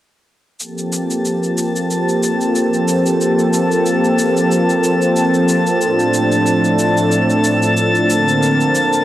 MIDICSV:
0, 0, Header, 1, 4, 480
1, 0, Start_track
1, 0, Key_signature, -2, "minor"
1, 0, Tempo, 652174
1, 440, Time_signature, 4, 2, 24, 8
1, 6656, End_track
2, 0, Start_track
2, 0, Title_t, "Synth texture"
2, 0, Program_c, 0, 99
2, 433, Note_on_c, 0, 81, 81
2, 435, Note_on_c, 0, 93, 76
2, 6656, Note_off_c, 0, 81, 0
2, 6656, Note_off_c, 0, 93, 0
2, 6656, End_track
3, 0, Start_track
3, 0, Title_t, "Analog synth pad"
3, 0, Program_c, 1, 89
3, 439, Note_on_c, 1, 69, 83
3, 442, Note_on_c, 1, 53, 73
3, 442, Note_on_c, 1, 58, 68
3, 442, Note_on_c, 1, 60, 73
3, 442, Note_on_c, 1, 67, 67
3, 4251, Note_off_c, 1, 58, 0
3, 4252, Note_off_c, 1, 67, 0
3, 4280, Note_on_c, 1, 45, 81
3, 4281, Note_on_c, 1, 62, 70
3, 5931, Note_off_c, 1, 53, 0
3, 5932, Note_off_c, 1, 60, 0
3, 5943, Note_off_c, 1, 45, 0
3, 5944, Note_off_c, 1, 62, 0
3, 5956, Note_on_c, 1, 58, 68
3, 5958, Note_on_c, 1, 50, 80
3, 5958, Note_on_c, 1, 60, 75
3, 6656, Note_off_c, 1, 50, 0
3, 6656, Note_off_c, 1, 58, 0
3, 6656, Note_off_c, 1, 60, 0
3, 6656, Note_off_c, 1, 69, 0
3, 6656, End_track
4, 0, Start_track
4, 0, Title_t, "Drums"
4, 441, Note_on_c, 9, 69, 38
4, 515, Note_off_c, 9, 69, 0
4, 575, Note_on_c, 9, 69, 19
4, 648, Note_off_c, 9, 69, 0
4, 682, Note_on_c, 9, 69, 64
4, 755, Note_off_c, 9, 69, 0
4, 814, Note_on_c, 9, 69, 27
4, 887, Note_off_c, 9, 69, 0
4, 922, Note_on_c, 9, 69, 37
4, 995, Note_off_c, 9, 69, 0
4, 1054, Note_on_c, 9, 69, 19
4, 1128, Note_off_c, 9, 69, 0
4, 1161, Note_on_c, 9, 69, 62
4, 1235, Note_off_c, 9, 69, 0
4, 1295, Note_on_c, 9, 69, 27
4, 1369, Note_off_c, 9, 69, 0
4, 1403, Note_on_c, 9, 69, 35
4, 1477, Note_off_c, 9, 69, 0
4, 1536, Note_on_c, 9, 69, 19
4, 1610, Note_off_c, 9, 69, 0
4, 1643, Note_on_c, 9, 69, 66
4, 1716, Note_off_c, 9, 69, 0
4, 1774, Note_on_c, 9, 69, 27
4, 1848, Note_off_c, 9, 69, 0
4, 1880, Note_on_c, 9, 69, 39
4, 1954, Note_off_c, 9, 69, 0
4, 2014, Note_on_c, 9, 69, 18
4, 2088, Note_off_c, 9, 69, 0
4, 2121, Note_on_c, 9, 69, 67
4, 2195, Note_off_c, 9, 69, 0
4, 2253, Note_on_c, 9, 69, 30
4, 2327, Note_off_c, 9, 69, 0
4, 2363, Note_on_c, 9, 69, 39
4, 2437, Note_off_c, 9, 69, 0
4, 2495, Note_on_c, 9, 69, 20
4, 2568, Note_off_c, 9, 69, 0
4, 2602, Note_on_c, 9, 69, 73
4, 2676, Note_off_c, 9, 69, 0
4, 2735, Note_on_c, 9, 69, 27
4, 2809, Note_off_c, 9, 69, 0
4, 2840, Note_on_c, 9, 69, 41
4, 2914, Note_off_c, 9, 69, 0
4, 2976, Note_on_c, 9, 69, 19
4, 3050, Note_off_c, 9, 69, 0
4, 3082, Note_on_c, 9, 69, 71
4, 3155, Note_off_c, 9, 69, 0
4, 3216, Note_on_c, 9, 69, 30
4, 3289, Note_off_c, 9, 69, 0
4, 3322, Note_on_c, 9, 69, 40
4, 3396, Note_off_c, 9, 69, 0
4, 3455, Note_on_c, 9, 69, 21
4, 3528, Note_off_c, 9, 69, 0
4, 3561, Note_on_c, 9, 69, 66
4, 3634, Note_off_c, 9, 69, 0
4, 3693, Note_on_c, 9, 69, 30
4, 3766, Note_off_c, 9, 69, 0
4, 3799, Note_on_c, 9, 69, 39
4, 3873, Note_off_c, 9, 69, 0
4, 3931, Note_on_c, 9, 69, 21
4, 4004, Note_off_c, 9, 69, 0
4, 4038, Note_on_c, 9, 69, 68
4, 4112, Note_off_c, 9, 69, 0
4, 4170, Note_on_c, 9, 69, 29
4, 4244, Note_off_c, 9, 69, 0
4, 4278, Note_on_c, 9, 69, 40
4, 4352, Note_off_c, 9, 69, 0
4, 4411, Note_on_c, 9, 69, 20
4, 4485, Note_off_c, 9, 69, 0
4, 4518, Note_on_c, 9, 69, 76
4, 4592, Note_off_c, 9, 69, 0
4, 4649, Note_on_c, 9, 69, 28
4, 4723, Note_off_c, 9, 69, 0
4, 4757, Note_on_c, 9, 69, 41
4, 4830, Note_off_c, 9, 69, 0
4, 4890, Note_on_c, 9, 69, 19
4, 4963, Note_off_c, 9, 69, 0
4, 4997, Note_on_c, 9, 69, 69
4, 5071, Note_off_c, 9, 69, 0
4, 5132, Note_on_c, 9, 69, 30
4, 5206, Note_off_c, 9, 69, 0
4, 5238, Note_on_c, 9, 69, 38
4, 5312, Note_off_c, 9, 69, 0
4, 5372, Note_on_c, 9, 69, 20
4, 5446, Note_off_c, 9, 69, 0
4, 5478, Note_on_c, 9, 69, 69
4, 5551, Note_off_c, 9, 69, 0
4, 5612, Note_on_c, 9, 69, 31
4, 5686, Note_off_c, 9, 69, 0
4, 5719, Note_on_c, 9, 69, 40
4, 5793, Note_off_c, 9, 69, 0
4, 5852, Note_on_c, 9, 69, 20
4, 5926, Note_off_c, 9, 69, 0
4, 5963, Note_on_c, 9, 69, 77
4, 6036, Note_off_c, 9, 69, 0
4, 6096, Note_on_c, 9, 69, 31
4, 6170, Note_off_c, 9, 69, 0
4, 6202, Note_on_c, 9, 69, 41
4, 6276, Note_off_c, 9, 69, 0
4, 6335, Note_on_c, 9, 69, 20
4, 6409, Note_off_c, 9, 69, 0
4, 6442, Note_on_c, 9, 69, 67
4, 6516, Note_off_c, 9, 69, 0
4, 6573, Note_on_c, 9, 69, 30
4, 6646, Note_off_c, 9, 69, 0
4, 6656, End_track
0, 0, End_of_file